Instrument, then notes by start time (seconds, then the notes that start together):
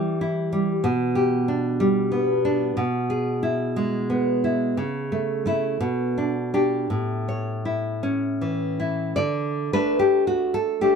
nylon-string guitar
Already playing: E3 G3 E4 G4
0.21 E4
0.52 G3
0.84 B2
1.15 G4
1.48 D4
1.80 G3
2.12 B3
2.45 D4
2.77 B2
3.10 G#4
3.43 E4
3.76 G#3
4.10 B3
4.44 E4
4.77 C#3
5.12 A3
5.46 A3 E4
5.80 B2
6.18 D4
6.54 D4 G4
6.90 A2
7.28 C#5
7.65 E4
8.03 C#4
8.41 E3
8.80 E4
9.16 D3 D5
9.73 A3 D4 B4
9.99 G4
10.27 F#4
10.54 A4
10.81 A3 D4 G4